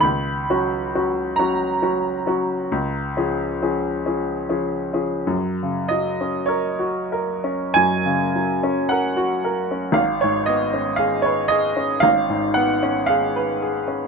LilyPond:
\new Staff \with { instrumentName = "Grand piano" } { \time 4/4 \key fis \major \tempo 4 = 52 << { b''4 ais''2~ ais''8 r8 | r8 dis''8 cis''4 gis''4 fis''4 | eis''16 cis''16 dis''8 eis''16 cis''16 dis''8 eis''8 fis''8 eis''4 | } \\ { \tuplet 3/2 { cis,8 <fis cis' fis'>8 <fis cis' fis'>8 <fis cis' fis'>8 <fis cis' fis'>8 <fis cis' fis'>8 cis,8 <eis cis' gis'>8 <eis cis' gis'>8 <eis cis' gis'>8 <eis cis' gis'>8 <eis cis' gis'>8 } | fis,16 cis16 fis16 cis'16 ais'16 fis'16 ais'16 cis'16 fis,16 cis16 fis16 cis'16 ais'16 fis'16 ais'16 cis'16 | gis,,16 gis,16 b16 cis'16 gis'16 b'16 gis'16 cis'16 gis,,16 gis,16 b16 cis'16 gis'16 b'16 gis'16 cis'16 | } >> }